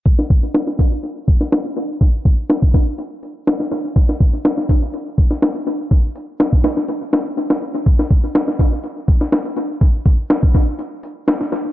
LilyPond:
\new DrumStaff \with { instrumentName = "Drums" } \drummode { \time 4/4 \tempo 4 = 123 <hh bd>16 sn16 <hh bd>8 <hh sn>16 sn16 <hh bd>8 hh8 <hh bd>16 sn16 <hh sn>16 hh16 hh8 | <hh bd>8 <hh bd>8 <hh sn>16 bd16 <hh bd>8 hh8 hh8 <hh sn>16 sn16 <hh sn>8 | <hh bd>16 sn16 <hh bd>8 <hh sn>16 sn16 <hh bd>8 hh8 <hh bd>16 sn16 <hh sn>16 hh16 hh8 | <hh bd>8 hh8 <hh sn>16 bd16 <hh sn>16 sn16 hh8 <hh sn>16 hh16 hh16 <hh sn>16 hh16 hh16 |
<hh bd>16 sn16 <hh bd>8 <hh sn>16 sn16 <hh bd>8 hh8 <hh bd>16 sn16 <hh sn>16 hh16 hh8 | <hh bd>8 <hh bd>8 <hh sn>16 bd16 <hh bd>8 hh8 hh8 <hh sn>16 sn16 <hh sn>8 | }